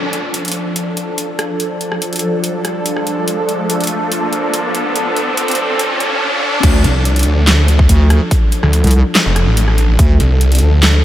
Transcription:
0.00 6.59 F3 medium
0.00 6.59 D4 medium
0.00 6.59 A4 medium
0.00 riser medium
0.13 closed hi-hat soft
0.34 closed hi-hat medium
0.45 closed hi-hat soft
0.48 closed hi-hat medium
0.52 closed hi-hat medium
0.76 closed hi-hat medium
0.97 closed hi-hat medium
1.18 closed hi-hat medium
1.39 cross-stick medium
1.39 closed hi-hat soft
1.60 closed hi-hat medium
1.81 closed hi-hat soft
1.92 cross-stick medium
2.02 closed hi-hat medium
2.13 closed hi-hat soft
2.16 closed hi-hat medium
2.19 closed hi-hat medium
2.44 closed hi-hat medium
2.65 cross-stick soft
2.65 closed hi-hat medium
2.86 closed hi-hat medium
2.97 cross-stick soft
3.07 closed hi-hat soft
3.28 closed hi-hat medium
3.49 closed hi-hat soft
3.70 closed hi-hat medium
3.81 closed hi-hat soft
3.84 closed hi-hat medium
3.87 closed hi-hat medium
4.12 closed hi-hat medium
4.33 closed hi-hat medium
4.54 closed hi-hat medium
4.75 closed hi-hat soft
4.96 closed hi-hat medium
5.16 closed hi-hat soft
5.37 closed hi-hat medium
5.48 closed hi-hat soft
5.51 closed hi-hat medium
5.55 closed hi-hat medium
5.79 closed hi-hat medium
6.00 closed hi-hat soft
6.63 6.83 D2 loud
6.63 11.04 F3 medium
6.63 11.04 D4 medium
6.63 11.04 A4 loud
6.63 kick loud
6.63 closed hi-hat medium
6.63 crash loud
6.84 7.25 C2 loud
6.84 closed hi-hat medium
7.05 closed hi-hat medium
7.16 closed hi-hat medium
7.19 closed hi-hat medium
7.23 7.88 D2 loud
7.23 closed hi-hat medium
7.47 snare loud
7.47 clap medium
7.47 closed hi-hat medium
7.68 closed hi-hat medium
7.79 kick loud
7.89 8.19 D2 loud
7.89 closed hi-hat medium
8.10 cross-stick medium
8.10 closed hi-hat medium
8.31 kick loud
8.31 closed hi-hat medium
8.52 closed hi-hat medium
8.63 8.82 D2 loud
8.63 cross-stick medium
8.73 closed hi-hat medium
8.84 9.03 C2 medium
8.84 closed hi-hat soft
8.87 closed hi-hat medium
8.91 closed hi-hat medium
9.15 snare loud
9.15 clap medium
9.15 closed hi-hat medium
9.26 9.45 F1 loud
9.36 cross-stick medium
9.36 closed hi-hat medium
9.47 9.87 A1 loud
9.57 closed hi-hat medium
9.68 cross-stick soft
9.78 closed hi-hat medium
9.89 9.97 A1 loud
9.99 10.18 D2 medium
9.99 kick loud
9.99 closed hi-hat medium
10.20 10.60 C2 loud
10.20 closed hi-hat soft
10.41 closed hi-hat medium
10.52 closed hi-hat soft
10.55 closed hi-hat medium
10.59 11.04 D2 loud
10.59 closed hi-hat medium
10.83 snare loud
10.83 clap medium
10.83 closed hi-hat medium

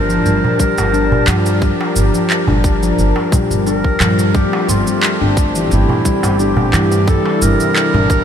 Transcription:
0.00 0.17 G1 medium
0.00 4.31 G3 medium
0.00 4.31 D4 medium
0.00 0.56 A#4 loud
0.00 4.31 A#4 medium
0.00 4.31 A5 medium
0.10 0.25 F3 medium
0.10 shaker soft
0.26 0.38 G1 medium
0.26 shaker soft
0.44 darbuka dum medium
0.60 0.77 G3 loud
0.60 1.24 A#4 loud
0.60 kick medium
0.60 darbuka ka soft
0.60 shaker medium
0.78 1.20 G1 medium
0.78 darbuka tek medium
0.78 shaker soft
0.94 1.04 D4 medium
0.94 shaker soft
1.12 darbuka dum medium
1.28 1.71 G2 loud
1.28 1.45 F3 medium
1.28 1.54 G4 medium
1.28 clap medium
1.28 darbuka tek medium
1.28 shaker medium
1.46 darbuka ka medium
1.46 shaker soft
1.55 1.64 A4 medium
1.62 1.72 G3 medium
1.62 2.99 G4 medium
1.62 kick loud
1.62 shaker soft
1.81 darbuka tek medium
1.96 2.08 G1 medium
1.96 shaker medium
2.14 2.47 F3 medium
2.14 shaker soft
2.30 clap medium
2.30 shaker soft
2.47 2.90 G1 medium
2.47 2.64 D4 medium
2.47 darbuka dum medium
2.64 kick loud
2.64 shaker medium
2.82 2.98 F3 medium
2.82 darbuka tek soft
2.82 shaker soft
2.98 3.11 G1 medium
2.98 shaker soft
3.16 darbuka tek medium
3.32 3.50 G3 loud
3.32 kick loud
3.32 darbuka ka medium
3.32 darbuka dum medium
3.32 shaker medium
3.51 3.92 G1 medium
3.51 shaker soft
3.66 3.77 D4 medium
3.66 4.37 A#4 loud
3.66 darbuka ka soft
3.66 shaker soft
3.84 kick medium
4.00 4.43 G2 loud
4.00 4.18 F3 medium
4.00 clap medium
4.00 darbuka tek medium
4.00 darbuka dum medium
4.00 shaker medium
4.19 darbuka ka soft
4.19 shaker soft
4.35 4.45 G3 loud
4.35 7.05 A3 medium
4.35 7.05 C4 medium
4.35 7.05 G4 medium
4.35 4.70 G4 medium
4.35 kick loud
4.35 shaker soft
4.53 darbuka tek medium
4.69 4.81 G1 medium
4.69 5.37 F4 medium
4.69 darbuka ka soft
4.69 shaker medium
4.87 5.19 G3 medium
4.87 shaker soft
5.03 clap medium
5.03 shaker soft
5.21 5.63 G1 medium
5.21 5.37 D4 medium
5.37 kick loud
5.37 shaker medium
5.55 5.71 E3 medium
5.55 shaker soft
5.71 5.83 G1 medium
5.71 6.41 E4 medium
5.71 shaker soft
5.89 darbuka dum medium
6.05 6.23 G3 loud
6.05 kick medium
6.05 darbuka ka soft
6.05 shaker medium
6.23 6.65 G1 medium
6.23 darbuka tek medium
6.23 shaker soft
6.40 6.50 D4 medium
6.40 7.10 G4 medium
6.40 shaker soft
6.57 darbuka dum loud
6.73 7.16 G2 medium
6.73 6.91 E3 loud
6.73 clap medium
6.73 darbuka tek medium
6.73 shaker medium
6.92 darbuka ka medium
6.92 shaker soft
7.08 8.24 C3 medium
7.08 7.18 G3 loud
7.08 8.24 G3 medium
7.08 8.24 D4 medium
7.08 8.24 E4 medium
7.08 7.44 A4 loud
7.08 kick loud
7.08 shaker soft
7.26 darbuka tek medium
7.42 7.54 G1 medium
7.42 8.24 A#4 loud
7.42 shaker medium
7.60 7.92 E3 medium
7.60 shaker soft
7.76 clap medium
7.76 shaker soft
7.94 8.24 G1 medium
7.94 8.09 D4 medium
7.94 darbuka dum medium
8.10 kick loud
8.10 shaker medium

